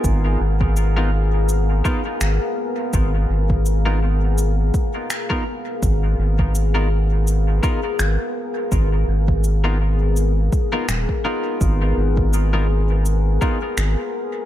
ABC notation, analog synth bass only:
X:1
M:4/4
L:1/8
Q:"Swing 16ths" 1/4=83
K:G#dor
V:1 name="Analog synth bass" clef=bass
G,,, G,,,4 z G,,, z | G,,, G,,,4 z3 | G,,, G,,,4 z G,,, z | G,,, G,,,4 z D,,, z |
G,,, G,,,4 z G,,, z |]